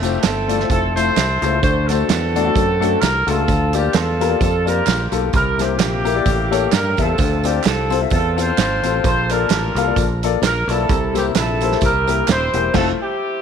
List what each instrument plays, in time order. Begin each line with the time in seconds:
Already playing: fingered electric bass F1, horn section C4 E4
0.02 upright piano A3 E4 F4 C5, horn section G4, closed hi-hat, tambourine
0.22 fingered electric bass G1, horn section C4 E4 A4, snare, clap, closed hi-hat, tambourine
0.48 upright piano A3 E4 F4 D5, closed hi-hat, tambourine
0.60 upright piano A3 E4 F4 C5, snare
0.70 fingered electric bass F1, horn section C4 E4 A4, kick, closed hi-hat, tambourine
0.93 upright piano A3 E4 F4 C5, horn section E4 A4 C5, closed hi-hat, tambourine
1.17 fingered electric bass C2, snare, clap, closed hi-hat, tambourine
1.42 fingered electric bass C#2, upright piano A3 E4 F4 C5, closed hi-hat, tambourine
1.61 fingered electric bass D2, upright piano D3, horn section F#4 A4 C5, kick, closed hi-hat, tambourine
1.87 upright piano A3 D4 F#4 C5, horn section C4 F#4 A4, snare, closed hi-hat, tambourine
2.09 fingered electric bass E2, snare, clap, closed hi-hat, tambourine
2.35 upright piano A3 D4 F#4 D5, closed hi-hat, tambourine
2.45 upright piano A3 D4 F#4 D5
2.55 fingered electric bass F#2, kick, closed hi-hat, tambourine
2.80 upright piano A3 D4 F#4 A4, closed hi-hat, tambourine
3.01 fingered electric bass C2, horn section A#4, snare, clap, closed hi-hat, tambourine
3.27 fingered electric bass C#2, upright piano A3 D4 F#4 A4, horn section F4 A4, closed hi-hat, tambourine
3.48 fingered electric bass D2, upright piano D3, kick, closed hi-hat, tambourine
3.73 upright piano A#3 F4 G4 D5, horn section G4, closed hi-hat, tambourine
3.93 fingered electric bass E2, horn section F4 A4, snare, clap, closed hi-hat, tambourine
4.20 upright piano A#3 F4 G4 A#4, closed hi-hat, tambourine
4.29 upright piano A#3 F4 G4 D5
4.41 fingered electric bass F2, horn section F4 A4, kick, closed hi-hat, tambourine
4.65 upright piano A#3 F4 G4 D5, horn section F4 G4 A#4, closed hi-hat, tambourine
4.87 fingered electric bass A#1, snare, clap, closed hi-hat, tambourine
5.12 fingered electric bass B1, upright piano A#3 F4 G4 A4, closed hi-hat, tambourine
5.32 fingered electric bass C2, upright piano C3, horn section E4 G4 A#4, kick, closed hi-hat, tambourine
5.59 upright piano A#3 E4 G4 C5, horn section A#3 E4 G4, snare, closed hi-hat, tambourine
5.79 fingered electric bass A#1, snare, clap, closed hi-hat, tambourine
6.04 upright piano A#3 E4 G4 A#4, closed hi-hat, tambourine
6.15 upright piano A#3 E4 G4 D5
6.26 fingered electric bass A1, upright piano A2, kick, closed hi-hat, tambourine
6.51 upright piano A#3 G4 A4 C#5, closed hi-hat, tambourine
6.72 fingered electric bass G2, horn section A#4, snare, clap, closed hi-hat, tambourine
6.97 fingered electric bass E2, upright piano A#3 G4 A4 E5, horn section C4 F4 A4, kick, closed hi-hat, tambourine
7.18 fingered electric bass D2, upright piano D3, kick, closed hi-hat, tambourine
7.44 upright piano C4 F4 A4 D5, horn section G4, closed hi-hat, tambourine
7.64 fingered electric bass C2, horn section C4 F4 A4, snare, clap, closed hi-hat, tambourine
7.90 upright piano C4 F4 A4 C5, closed hi-hat, tambourine
8.01 upright piano C4 F4 A4 E5
8.10 fingered electric bass E2, horn section C4 F4 A4, kick, closed hi-hat, tambourine
8.36 upright piano C4 F4 A4 F5, horn section F4 A4 C5, closed hi-hat, tambourine
8.58 fingered electric bass G#1, snare, clap, closed hi-hat, tambourine
8.83 fingered electric bass A1, upright piano C4 F4 A4 C5, closed hi-hat, tambourine
9.03 fingered electric bass A#1, upright piano A#2, horn section F4 A4 C5, kick, closed hi-hat, tambourine
9.29 upright piano A#3 F4 A4 D5, horn section D4 F4 A#4, closed hi-hat, tambourine
9.50 fingered electric bass A1, snare, clap, closed hi-hat, tambourine
9.75 fingered electric bass C2, upright piano A#3 F4 A4 F5, closed hi-hat, tambourine
9.87 upright piano A#3 F4 A4 D5
9.96 fingered electric bass A#1, kick, closed hi-hat, tambourine
10.23 upright piano A#3 F4 A4 D5, closed hi-hat, tambourine
10.42 fingered electric bass A#1, horn section A#4, snare, clap, closed hi-hat, tambourine
10.67 fingered electric bass B1, upright piano A#3 F4 A4 D5, horn section E4, closed hi-hat, tambourine
10.72 horn section A4
10.89 fingered electric bass C2, upright piano C3, kick, closed hi-hat, tambourine
11.14 upright piano A#3 E4 G4 C5, horn section G4, snare, closed hi-hat, tambourine
11.35 fingered electric bass A#1, horn section E4 A4, snare, clap, closed hi-hat, tambourine
11.61 upright piano A#3 E4 G4 C5, closed hi-hat, tambourine
11.72 upright piano A#3 E4 G4 C5, snare
11.81 fingered electric bass C2, horn section E4 G4 A#4, kick, closed hi-hat, tambourine
12.07 upright piano A#3 E4 G4 A#4, closed hi-hat, tambourine
12.28 fingered electric bass D#1, horn section E4 G4 C5, snare, clap, closed hi-hat, tambourine
12.53 fingered electric bass E1, upright piano A#3 E4 G4 C5, closed hi-hat, tambourine
12.73 fingered electric bass F1, upright piano A3 E4 F4 C5, horn section C4 E4 A4, kick, snare, crash
13.00 horn section C4 E4 G4